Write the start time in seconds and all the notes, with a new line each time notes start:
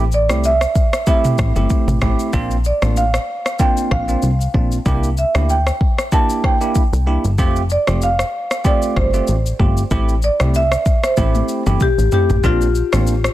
Already playing: A1
0.12 D5, shaker
0.29 C2 A3 C4 E4 G4, cross-stick, shaker
0.44 E5, shaker
0.61 cross-stick, shaker
0.75 kick, shaker
0.93 cross-stick, shaker
1.07 A3 C4 E4 G4 E5, kick, shaker
1.25 mid tom, shaker
1.38 A1, kick, cross-stick, shaker
1.56 G1 A3 C4 E4 G4, shaker
1.70 kick, shaker
1.88 A1, mid tom, shaker
2.01 A1 A3 C4 E4 G4, kick, cross-stick, shaker
2.19 shaker
2.33 A#1 A#3 C4 D4 F4, kick, shaker
2.51 shaker
2.64 D5, shaker
2.82 A1 A#3 C4 D4 F4, cross-stick, shaker
2.97 F5, shaker
3.14 cross-stick, shaker
3.46 cross-stick, shaker
3.59 A#3 C4 D4 F4 G5, kick, shaker
3.77 shaker
3.91 A#1 F5, kick, cross-stick
4.08 A#3 C4 D4 F4, shaker
4.22 C2, shaker
4.41 shaker
4.54 A#1 A#3 C4 D4 F4, kick
4.72 shaker
4.86 C2 A#3 D4 E4 G4, kick, shaker
5.03 shaker
5.17 E5, shaker
5.35 D2 A#3 D4 E4 G4, cross-stick, shaker
5.49 G5, shaker
5.67 cross-stick, shaker
5.81 kick
5.98 cross-stick, shaker
6.12 A#3 D4 E4 G4 A5, kick, shaker
6.30 shaker
6.44 G5, kick, cross-stick
6.61 A#3 D4 E4 G4, shaker
6.75 kick, shaker
6.93 C2, shaker
7.07 A#3 D4 E4 G4
7.24 G1, shaker
7.38 F1 A3 C4 F4 G4, kick, shaker
7.56 shaker
7.70 D5, shaker
7.87 F1 A3 C4 F4 G4, cross-stick, shaker
8.02 F5, shaker
8.19 cross-stick, shaker
8.51 cross-stick, shaker
8.64 A3 C4 F4 G4 D5, kick, shaker
8.82 shaker
8.96 G1 C5, kick, cross-stick
9.14 A3 C4 F4 G4, shaker
9.28 A1, shaker
9.46 shaker
9.59 G1 A3 C4 F4 G4, kick
9.77 shaker
9.91 A1 A3 C4 E4 G4, kick, shaker
10.09 shaker
10.22 D5, shaker
10.40 C2 A3 C4 E4 G4, cross-stick, shaker
10.54 E5, shaker
10.72 cross-stick, shaker
10.86 kick, shaker
11.04 C5, cross-stick, shaker
11.17 A1 A3 C4 E4 G4, kick, high tom, shaker
11.35 high tom, shaker
11.49 shaker
11.66 G1 A3 C4 E4 G4, mid tom, shaker
11.80 G4, kick, mid tom, shaker
11.98 A1, shaker
12.12 A3 C4 E4 G4, floor tom, shaker
12.30 A1, floor tom, shaker
12.44 A#1 A#3 C4 D4 F4, kick, shaker
12.61 shaker
12.75 shaker
12.93 A1 A#3 C4 D4 F4, cross-stick, shaker
13.07 shaker
13.24 cross-stick, shaker